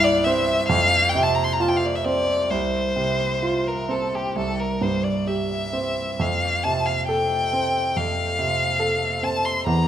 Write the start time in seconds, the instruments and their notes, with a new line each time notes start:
Already playing: grand piano C2 G2 E4
0.04 violin D5
0.24 grand piano C4, violin E5
0.68 grand piano F2, violin F5
1.09 violin G5
1.15 grand piano C3
1.23 violin A5
1.35 violin A#5
1.44 violin C6
1.53 violin A#5
1.60 grand piano F4, violin A5
1.68 violin G5
1.77 violin F5
1.85 violin D5
1.96 violin E5
2.04 grand piano C4, violin D5
2.50 grand piano C2, violin C5
2.96 grand piano C3
3.43 grand piano F4
3.67 violin A#4
3.89 grand piano C4, violin A4
4.15 violin G4
4.36 grand piano C2, violin A4
4.60 violin A#4
4.81 grand piano G2, violin C5
5.04 violin D5
5.27 grand piano G4, violin E5
5.73 grand piano C4
6.19 grand piano F2, violin F5
6.64 grand piano C3, violin A5
6.86 violin F5
7.07 grand piano A4, violin G5
7.53 grand piano C4
7.96 grand piano F2, violin F5
8.39 grand piano C3
8.80 grand piano A4
9.23 grand piano C4, violin A5
9.45 violin C6
9.66 grand piano E2, violin A#5